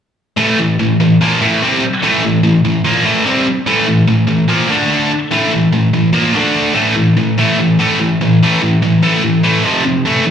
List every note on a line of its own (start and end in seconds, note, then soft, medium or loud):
0.37 0.57 A2 medium
0.37 0.58 E3 medium
0.37 0.58 A3 loud
0.58 0.75 A2 medium
0.58 0.75 E3 medium
0.79 0.96 A2 medium
0.79 0.96 E3 medium
1.00 1.16 A2 medium
1.00 1.17 E3 medium
1.21 1.40 A#2 medium
1.21 1.41 F3 loud
1.21 1.41 A#3 medium
1.41 1.61 A2 medium
1.41 1.61 E3 medium
1.41 1.61 A3 loud
1.63 1.82 C3 loud
1.63 1.82 G3 loud
1.63 1.82 C4 loud
2.02 2.22 A2 medium
2.02 2.23 E3 medium
2.02 2.23 A3 loud
2.23 2.39 A2 medium
2.23 2.40 E3 medium
2.43 2.60 A2 medium
2.43 2.60 E3 medium
2.65 2.81 A2 medium
2.65 2.81 E3 medium
2.84 3.04 A#2 loud
2.84 3.05 F3 loud
2.84 3.05 A#3 loud
3.05 3.25 A2 medium
3.05 3.25 E3 medium
3.05 3.25 A3 loud
3.25 3.45 C3 medium
3.25 3.46 G3 loud
3.25 3.46 C4 loud
3.67 3.86 A2 loud
3.67 3.86 E3 loud
3.67 3.87 A3 loud
3.87 4.03 A2 medium
3.87 4.04 E3 medium
4.07 4.24 A2 medium
4.07 4.24 E3 medium
4.27 4.44 A2 medium
4.27 4.45 E3 medium
4.48 4.68 A#2 loud
4.48 4.69 F3 loud
4.48 4.69 A#3 medium
4.70 5.10 D3 medium
4.70 5.10 A3 medium
4.70 5.11 D4 loud
5.31 5.51 A2 medium
5.31 5.51 E3 medium
5.31 5.52 A3 loud
5.52 5.68 A2 medium
5.52 5.68 E3 medium
5.72 5.89 A2 medium
5.72 5.89 E3 medium
5.94 6.10 A2 medium
5.94 6.10 E3 medium
6.13 6.33 A#2 medium
6.13 6.33 F3 medium
6.13 6.34 A#3 loud
6.34 6.74 D3 medium
6.34 6.74 A3 medium
6.34 6.75 D4 medium
6.74 6.94 A2 medium
6.74 6.94 E3 medium
6.74 6.94 A3 loud
6.96 7.14 A2 medium
6.96 7.14 E3 medium
7.17 7.35 A2 medium
7.17 7.35 E3 medium
7.38 7.56 A2 medium
7.38 7.57 E3 medium
7.38 7.57 A3 medium
7.58 7.76 A2 medium
7.58 7.76 E3 medium
7.79 7.98 A2 medium
7.79 7.98 E3 medium
7.79 7.98 A3 loud
7.99 8.17 A2 medium
7.99 8.18 E3 medium
8.21 8.38 A2 medium
8.21 8.39 E3 medium
8.43 8.61 A2 medium
8.43 8.60 E3 medium
8.43 8.61 A3 medium
8.62 8.80 A2 medium
8.62 8.80 E3 medium
8.82 9.00 A2 medium
8.82 9.00 E3 medium
9.02 9.21 A2 medium
9.02 9.22 E3 medium
9.02 9.22 A3 loud
9.23 9.41 A2 medium
9.23 9.41 E3 medium
9.43 9.62 A2 medium
9.43 9.62 E3 loud
9.43 9.63 A3 loud
9.63 9.82 F2 medium
9.63 9.83 C3 medium
9.63 9.83 F3 medium
9.85 10.02 F2 medium
9.85 10.03 C3 medium
10.05 10.24 A2 medium
10.05 10.24 E3 medium
10.05 10.24 A3 loud
10.26 10.31 A2 medium
10.26 10.31 E3 medium